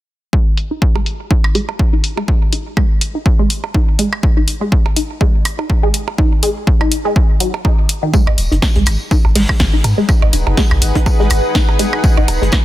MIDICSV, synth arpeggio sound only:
0, 0, Header, 1, 2, 480
1, 0, Start_track
1, 0, Key_signature, 5, "minor"
1, 0, Tempo, 487805
1, 326, Time_signature, 4, 2, 24, 8
1, 12447, End_track
2, 0, Start_track
2, 0, Title_t, "Synth arpeggio sound"
2, 0, Program_c, 0, 84
2, 325, Note_on_c, 0, 56, 94
2, 361, Note_off_c, 0, 56, 0
2, 699, Note_on_c, 0, 63, 73
2, 771, Note_off_c, 0, 63, 0
2, 939, Note_on_c, 0, 56, 94
2, 968, Note_off_c, 0, 56, 0
2, 1285, Note_on_c, 0, 63, 79
2, 1376, Note_off_c, 0, 63, 0
2, 1525, Note_on_c, 0, 56, 96
2, 1562, Note_off_c, 0, 56, 0
2, 1899, Note_on_c, 0, 63, 73
2, 1971, Note_off_c, 0, 63, 0
2, 2139, Note_on_c, 0, 56, 95
2, 2168, Note_off_c, 0, 56, 0
2, 2486, Note_on_c, 0, 63, 73
2, 2576, Note_off_c, 0, 63, 0
2, 2725, Note_on_c, 0, 56, 97
2, 2761, Note_off_c, 0, 56, 0
2, 3100, Note_on_c, 0, 63, 73
2, 3171, Note_off_c, 0, 63, 0
2, 3339, Note_on_c, 0, 56, 96
2, 3368, Note_off_c, 0, 56, 0
2, 3685, Note_on_c, 0, 63, 79
2, 3776, Note_off_c, 0, 63, 0
2, 3925, Note_on_c, 0, 56, 97
2, 3962, Note_off_c, 0, 56, 0
2, 4299, Note_on_c, 0, 63, 72
2, 4371, Note_off_c, 0, 63, 0
2, 4539, Note_on_c, 0, 56, 93
2, 4568, Note_off_c, 0, 56, 0
2, 4885, Note_on_c, 0, 63, 73
2, 4976, Note_off_c, 0, 63, 0
2, 5125, Note_on_c, 0, 56, 95
2, 5161, Note_off_c, 0, 56, 0
2, 5499, Note_on_c, 0, 63, 76
2, 5571, Note_off_c, 0, 63, 0
2, 5738, Note_on_c, 0, 56, 101
2, 5767, Note_off_c, 0, 56, 0
2, 6085, Note_on_c, 0, 63, 78
2, 6176, Note_off_c, 0, 63, 0
2, 6326, Note_on_c, 0, 56, 100
2, 6362, Note_off_c, 0, 56, 0
2, 6699, Note_on_c, 0, 63, 75
2, 6771, Note_off_c, 0, 63, 0
2, 6939, Note_on_c, 0, 56, 96
2, 6968, Note_off_c, 0, 56, 0
2, 7285, Note_on_c, 0, 54, 74
2, 7346, Note_off_c, 0, 54, 0
2, 7525, Note_on_c, 0, 63, 81
2, 7562, Note_off_c, 0, 63, 0
2, 7899, Note_on_c, 0, 51, 75
2, 7947, Note_off_c, 0, 51, 0
2, 8005, Note_on_c, 0, 56, 96
2, 8041, Note_off_c, 0, 56, 0
2, 8379, Note_on_c, 0, 63, 76
2, 8451, Note_off_c, 0, 63, 0
2, 8619, Note_on_c, 0, 56, 98
2, 8648, Note_off_c, 0, 56, 0
2, 8965, Note_on_c, 0, 63, 82
2, 9056, Note_off_c, 0, 63, 0
2, 9205, Note_on_c, 0, 56, 100
2, 9242, Note_off_c, 0, 56, 0
2, 9579, Note_on_c, 0, 63, 75
2, 9651, Note_off_c, 0, 63, 0
2, 9820, Note_on_c, 0, 56, 100
2, 9848, Note_off_c, 0, 56, 0
2, 10166, Note_on_c, 0, 63, 76
2, 10256, Note_off_c, 0, 63, 0
2, 10405, Note_on_c, 0, 56, 99
2, 10442, Note_off_c, 0, 56, 0
2, 10779, Note_on_c, 0, 63, 71
2, 10851, Note_off_c, 0, 63, 0
2, 11019, Note_on_c, 0, 56, 100
2, 11048, Note_off_c, 0, 56, 0
2, 11365, Note_on_c, 0, 63, 82
2, 11456, Note_off_c, 0, 63, 0
2, 11605, Note_on_c, 0, 56, 99
2, 11641, Note_off_c, 0, 56, 0
2, 11979, Note_on_c, 0, 63, 73
2, 12051, Note_off_c, 0, 63, 0
2, 12218, Note_on_c, 0, 56, 98
2, 12248, Note_off_c, 0, 56, 0
2, 12447, End_track
0, 0, End_of_file